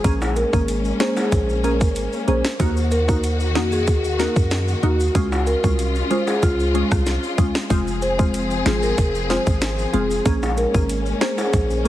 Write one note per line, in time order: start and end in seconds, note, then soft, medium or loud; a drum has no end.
0.04 0.44 A#1 loud
0.04 2.57 G#3 medium
0.04 0.49 A#3 loud
0.04 5.11 A#3 medium
0.04 0.49 C#4 medium
0.04 2.57 C#4 medium
0.04 0.49 G#4 loud
0.04 kick loud
0.04 closed hi-hat medium
0.04 maracas medium
0.22 high timbale medium
0.22 maracas medium
0.36 0.48 A#4 medium
0.36 closed hi-hat medium
0.36 maracas medium
0.53 0.92 G#1 medium
0.53 0.96 A#3 medium
0.53 0.97 C#4 medium
0.53 0.97 G#4 medium
0.53 kick medium
0.53 maracas medium
0.68 closed hi-hat medium
0.68 maracas medium
0.85 maracas medium
1.00 1.30 A#3 medium
1.00 1.30 C#4 medium
1.00 1.30 G#4 medium
1.00 1.12 C5 medium
1.00 finger snap loud
1.00 snare loud
1.00 closed hi-hat soft
1.17 1.27 G#4 medium
1.17 high timbale medium
1.17 maracas medium
1.32 1.83 A#1 loud
1.32 kick medium
1.32 closed hi-hat medium
1.32 maracas medium
1.49 maracas medium
1.64 1.84 A#3 medium
1.64 1.84 C#4 medium
1.64 1.84 G#4 medium
1.64 1.75 A#4 medium
1.64 closed hi-hat medium
1.64 maracas medium
1.81 2.07 G#1 medium
1.81 kick loud
1.81 maracas medium
1.96 closed hi-hat medium
1.96 maracas medium
2.13 maracas medium
2.28 2.42 A#1 medium
2.28 2.48 A#3 medium
2.28 2.48 C#4 medium
2.28 2.48 G#4 medium
2.28 2.39 C5 medium
2.28 closed hi-hat soft
2.45 finger snap medium
2.45 snare loud
2.45 maracas medium
2.59 3.57 D#2 loud
2.59 5.12 D#3 medium
2.59 3.04 A#3 loud
2.59 3.05 D#4 medium
2.59 5.12 F#4 medium
2.59 3.05 F#4 loud
2.59 kick loud
2.59 closed hi-hat medium
2.59 maracas medium
2.77 maracas medium
2.91 3.03 A#4 medium
2.91 closed hi-hat medium
2.91 maracas medium
3.08 3.52 A#3 medium
3.08 3.52 D#4 medium
3.08 3.52 F#4 medium
3.08 kick medium
3.08 maracas medium
3.24 closed hi-hat medium
3.24 maracas medium
3.40 maracas soft
3.55 3.89 F2 medium
3.55 3.85 A#3 medium
3.55 3.85 D#4 medium
3.55 3.67 F#4 medium
3.55 3.85 F#4 medium
3.55 finger snap medium
3.55 snare loud
3.55 closed hi-hat medium
3.72 3.82 G#4 medium
3.72 maracas medium
3.87 4.28 D#2 loud
3.87 kick medium
3.87 closed hi-hat medium
3.87 maracas medium
4.04 maracas medium
4.19 4.39 A#3 medium
4.19 4.39 D#4 medium
4.19 4.39 F#4 medium
4.19 4.31 A#4 medium
4.19 snare medium
4.19 closed hi-hat medium
4.19 maracas medium
4.36 4.75 F#2 medium
4.36 kick loud
4.36 maracas medium
4.51 finger snap medium
4.51 snare loud
4.51 closed hi-hat medium
4.51 maracas medium
4.68 maracas medium
4.83 5.09 D#2 loud
4.83 5.03 A#3 medium
4.83 5.03 D#4 medium
4.83 4.94 F#4 medium
4.83 5.03 F#4 medium
4.83 closed hi-hat soft
5.00 maracas medium
5.15 5.55 C#2 loud
5.15 5.60 G#3 loud
5.15 7.68 G#3 medium
5.15 7.68 C#4 medium
5.15 5.60 C#4 medium
5.15 7.68 F4 medium
5.15 5.60 F4 loud
5.15 kick loud
5.15 closed hi-hat medium
5.15 maracas medium
5.32 high timbale medium
5.32 maracas medium
5.47 5.58 A#4 medium
5.47 closed hi-hat medium
5.47 maracas soft
5.64 6.02 C2 medium
5.64 6.07 G#3 medium
5.64 6.07 C#4 medium
5.64 6.07 F4 medium
5.64 kick medium
5.64 maracas medium
5.79 closed hi-hat medium
5.79 maracas medium
5.95 maracas medium
6.11 6.40 G#3 medium
6.11 6.40 C#4 medium
6.11 6.41 F4 medium
6.11 6.22 C5 medium
6.11 closed hi-hat medium
6.11 maracas soft
6.27 6.38 G#4 medium
6.27 high timbale medium
6.27 maracas medium
6.43 6.83 C#2 loud
6.43 6.89 F4 medium
6.43 kick medium
6.43 closed hi-hat medium
6.43 maracas medium
6.60 maracas medium
6.74 6.95 G#3 medium
6.74 6.95 C#4 medium
6.74 6.95 F4 medium
6.74 closed hi-hat medium
6.91 7.18 C2 medium
6.91 kick loud
6.91 cross-stick loud
6.91 maracas medium
7.06 snare medium
7.06 closed hi-hat medium
7.06 maracas medium
7.23 maracas medium
7.38 7.52 C#2 loud
7.38 7.58 G#3 medium
7.38 7.58 C#4 medium
7.38 7.59 F4 medium
7.38 kick loud
7.38 closed hi-hat soft
7.38 maracas medium
7.55 finger snap medium
7.55 snare loud
7.55 maracas medium
7.70 8.62 F1 loud
7.70 10.23 F3 medium
7.70 8.15 G#3 medium
7.70 8.15 C4 medium
7.70 10.23 C4 medium
7.70 8.15 F4 loud
7.70 10.23 G#4 medium
7.70 kick loud
7.70 closed hi-hat medium
7.70 maracas medium
7.88 maracas medium
8.02 8.14 C5 medium
8.02 closed hi-hat medium
8.02 maracas medium
8.19 8.62 G#3 medium
8.19 8.62 C4 medium
8.19 8.63 F4 medium
8.19 kick loud
8.19 maracas medium
8.34 closed hi-hat medium
8.34 maracas medium
8.51 maracas soft
8.66 8.92 G#1 medium
8.66 8.95 G#3 medium
8.66 8.96 C4 medium
8.66 8.96 F4 medium
8.66 8.77 G#4 medium
8.66 finger snap medium
8.66 snare loud
8.66 closed hi-hat medium
8.83 8.93 A#4 medium
8.83 maracas medium
8.98 9.38 F1 loud
8.98 kick medium
8.98 closed hi-hat medium
8.98 maracas medium
9.15 maracas medium
9.30 9.50 G#3 medium
9.30 9.50 C4 medium
9.30 9.50 F4 medium
9.30 9.41 C5 medium
9.30 snare medium
9.30 closed hi-hat medium
9.30 maracas medium
9.47 9.85 G#1 loud
9.47 kick loud
9.47 maracas medium
9.62 finger snap loud
9.62 snare loud
9.62 closed hi-hat medium
9.62 maracas medium
9.79 maracas medium
9.93 10.20 F1 medium
9.93 10.14 G#3 medium
9.93 10.14 C4 medium
9.93 10.14 F4 medium
9.93 10.05 G#4 medium
9.93 closed hi-hat soft
10.11 maracas medium
10.25 10.66 A#1 loud
10.25 11.88 G#3 medium
10.25 10.70 A#3 medium
10.25 11.88 A#3 medium
10.25 11.88 C#4 medium
10.25 10.70 C#4 medium
10.25 10.71 G#4 loud
10.25 kick loud
10.25 closed hi-hat medium
10.25 maracas medium
10.43 high timbale medium
10.43 maracas medium
10.57 10.69 A#4 medium
10.57 closed hi-hat medium
10.57 maracas soft
10.74 11.13 G#1 medium
10.74 11.18 A#3 medium
10.74 11.18 C#4 medium
10.74 11.18 G#4 medium
10.74 kick loud
10.74 maracas medium
10.89 closed hi-hat medium
10.89 maracas medium
11.06 maracas soft
11.21 11.51 A#3 medium
11.21 11.51 C#4 medium
11.21 11.51 G#4 medium
11.21 11.33 C5 medium
11.21 finger snap medium
11.21 snare loud
11.21 closed hi-hat medium
11.38 11.48 G#4 medium
11.38 high timbale medium
11.38 maracas medium
11.53 11.88 A#1 loud
11.53 kick medium
11.53 closed hi-hat medium
11.53 maracas medium
11.70 maracas medium
11.85 11.88 A#3 medium